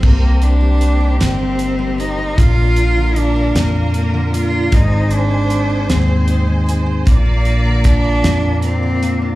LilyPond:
<<
  \new Staff \with { instrumentName = "Violin section" } { \time 6/8 \key c \minor \tempo 4. = 51 g'2. | bes'2. | c''2. | d''2~ d''8 r8 | }
  \new Staff \with { instrumentName = "Tonewheel organ" } { \time 6/8 \key c \minor << { <c' g' c''>2. | <d' f' f''>2. | <ees aes' aes''>2. | <f' bes' bes''>2. | } \\ { bes'2.~ | bes'2. | c''2. | d''2. | } >> }
  \new Staff \with { instrumentName = "Cello" } { \time 6/8 \key c \minor bes8 d'4 c'4 ees'8 | f'4 d'8 bes4 f'8 | ees'8 d'4 c'4 r8 | bes4 d'4 c'4 | }
  \new Staff \with { instrumentName = "Steel-string acoustic guitar" } { \time 6/8 \key c \minor c16 bes8 g16 bes16 ees'16 c16 bes16 ees'16 g16 bes16 ees'16 | bes,16 bes16 d'16 d16 bes16 d'16 bes,16 bes16 d'16 d16 bes16 d'16 | aes,16 c'8 ees16 c'16 ees'16 aes,16 c'16 ees'16 ees16 c'16 ees'16 | bes,16 bes16 d'16 d16 bes16 d'16 bes,16 bes16 d'16 d16 bes16 d'16 | }
  \new Staff \with { instrumentName = "Fingered electric bass" } { \clef bass \time 6/8 \key c \minor c,4. g,,4. | bes,,4. f,4. | aes,,4. ees,4. | bes,,4. f,4. | }
  \new DrumStaff \with { instrumentName = "Drums" } \drummode { \time 6/8 <cymc bd>8 hh8 hh8 <hh sn>8 hh8 hh8 | <hh bd>8 hh8 hh8 <hh sn>8 hh8 hh8 | <hh bd>8 hh8 hh8 <hh sn>8 hh8 hh8 | <hh bd>8 hh8 <hh bd sn>8 <hh sn>8 hh8 hh8 | }
>>